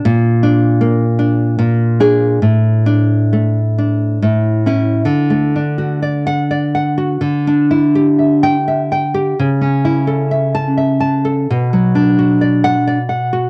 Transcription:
\new Staff \with { instrumentName = "Nylon-string guitar" } { \time 3/4 \key d \major \tempo 4 = 83 << { r8 d'4 r4 aes'8 | r8 d'4 r4 e'8 | r4 \tuplet 3/2 { r4 fis''8 } r4 | r4 \tuplet 3/2 { r4 g''8 } r4 |
r4 \tuplet 3/2 { r4 a''8 } r4 | r4 \tuplet 3/2 { r4 fis''8 } r4 | } \\ { bes,4 bes8 d'8 bes,8 d'8 | a,4 a8 d'8 a,8 cis'8 | \tuplet 3/2 { d8 a8 d'8 fis'8 d''4 d''8 fis''8 fis'8 } | \tuplet 3/2 { d8 d'8 e'8 g'8 e''4 e''8 g''8 g'8 } |
\tuplet 3/2 { cis8 cis'8 e'8 a'8 e''4 e''8 a''8 a'8 } | \tuplet 3/2 { b,8 fis8 d'8 fis'8 d''4 d''8 fis''8 fis'8 } | } >> }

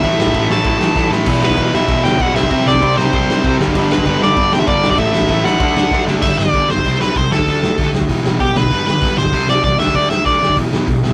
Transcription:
<<
  \new Staff \with { instrumentName = "Lead electric guitar" } { \time 4/4 \key g \major \tempo 4 = 194 e''4. a''2 r8 | r8 b'4 e''4 g''8 fis''8 e''8 | e''8 d''4 c''2 r8 | r8 b'4 d''4 g''16 e''16 d''8. d''16 |
e''8 e''4 fis''2 r8 | e''8 d''4 c''4 b'8 c''8 a'8~ | a'4. r4. g'8 b'8~ | b'8 b'4 c''4 d''8 d''8 e''8 |
d''8 e''8 d''4 r2 | }
  \new Staff \with { instrumentName = "Distorted electric guitar" } { \clef bass \time 4/4 \key g \major <a, e a>4 <a, e a>8 <a, e a>8 <a, e a>4 <a, e a>8 <a, e a>8 | <e, b, e>4 <e, b, e>8 <e, b, e>8 <e, b, e>4 <e, b, e>8 <c g c'>8 | <c g c'>4 <c g c'>8 <c g c'>8 <c g c'>4 <c g c'>8 <g, d g>8 | <g, d g>4 <g, d g>8 <g, d g>8 <g, d g>4 <g, d g>8 <g, d g>8 |
<a, e a>4 <a, e a>8 <a, e a>8 <d a d'>4 <d a d'>8 <d a d'>8 | r1 | r1 | r1 |
r1 | }
  \new Staff \with { instrumentName = "Distorted electric guitar" } { \clef bass \time 4/4 \key g \major <a, e a>4 <a, e a>8 <a, e a>8 <a, e a>4 <a, e a>8 <a, e a>8 | <e, b, e>4 <e, b, e>8 <e, b, e>8 <e, b, e>4 <e, b, e>8 <c g c'>8 | <c g c'>4 <c g c'>8 <c g c'>8 <c g c'>4 <c g c'>8 <g, d g>8 | <g, d g>4 <g, d g>8 <g, d g>8 <g, d g>4 <g, d g>8 <g, d g>8 |
<a, e a>4 <a, e a>8 <a, e a>8 <d a d'>4 <d a d'>8 <d a d'>8 | r1 | r1 | r1 |
r1 | }
  \new Staff \with { instrumentName = "Distorted electric guitar" } { \clef bass \time 4/4 \key g \major <a, e a>4 <a, e a>8 <a, e a>8 <a, e a>4 <a, e a>8 <a, e a>8 | <e, b, e>4 <e, b, e>8 <e, b, e>8 <e, b, e>4 <e, b, e>8 <c g c'>8 | <c g c'>4 <c g c'>8 <c g c'>8 <c g c'>4 <c g c'>8 <g, d g>8 | <g, d g>4 <g, d g>8 <g, d g>8 <g, d g>4 <g, d g>8 <g, d g>8 |
<a, e a>4 <a, e a>8 <a, e a>8 <d a d'>4 <d a d'>8 <d a d'>8 | <g, d g>8 <g, d>8 <g, d g>8 <g, d>8 <c g c'>8 <c g c'>8 <c g>8 <d a d'>8 | <d a d'>8 <d a>8 <d a d'>8 <d a>8 <e, b, e>8 <e, b, e>8 <e, b,>8 <e, b,>8 | <g, d g>8 <g, d>8 <g, d g>8 <g, d>8 <c g c'>8 <c g c'>8 <c g>8 <d a d'>8 |
<d a d'>8 <d a>8 <d a d'>8 <d a>8 <e, b, e>8 <e, b, e>8 <e, b,>8 <e, b,>8 | }
  \new Staff \with { instrumentName = "Picked electric bass" } { \clef bass \time 4/4 \key g \major a,,8 a,,8 a,,8 a,,8 a,,8 a,,8 a,,8 a,,8 | e,,8 e,8 e,,8 e,,8 e,,8 d,8 e,,8 c,8 | c,8 c,8 c,8 c,8 c,8 c,8 c,8 g,,8 | g,,8 g,8 g,,8 g,,8 g,,8 e,,8 g,,8 b,,8 |
a,,8 a,,8 a,,8 a,,8 d,8 d,8 d,8 fis,,8 | g,,8 g,,8 g,,8 d,8 c,8 c,8 c,8 d,8 | d,8 d,8 d,8 d,8 e,,8 e,,8 e,,8 d,8 | g,,8 g,,8 g,,8 b,,8 c,8 c,8 e,8 d,8 |
d,8 d,8 d,8 fis,8 e,,8 e,,8 e,,8 d,8 | }
  \new DrumStaff \with { instrumentName = "Drums" } \drummode { \time 4/4 <bd cymr>8 sn16 bd16 <bd cymr>8 sn8 <bd cymr>8 sn8 <bd sn>8 sn8 | <cymc bd cymr>8 sn16 bd16 <bd cymr>8 sn8 <bd cymr>8 sn8 <bd cymr>8 sn16 bd16 | <bd cymr>8 sn16 bd16 <bd cymr>8 sn8 <bd cymr>8 sn8 <bd cymr>8 sn16 bd16 | <cymc bd>8 sn16 bd16 <bd cymr>8 sn8 <bd cymr>8 sn8 <bd cymr>8 sn16 bd16 |
<bd cymr>8 sn16 bd16 <bd cymr>8 sn8 <bd cymr>8 sn8 <bd sn>8 sn8 | <cymc bd>8 sn8 <hho bd>8 sn16 bd16 <hho bd>8 sn8 <hho bd>8 sn16 bd16 | <hho bd>8 sn8 <hho bd>8 sn16 bd16 <hho bd>8 sn8 <hho bd>8 sn16 bd16 | <hho bd>8 sn8 <hho bd>8 sn16 bd16 <hho bd>8 sn8 <hho bd>8 sn16 bd16 |
<hho bd>8 sn8 <hho bd>8 sn16 bd16 <hho bd>8 sn8 <hho bd>8 sn8 | }
>>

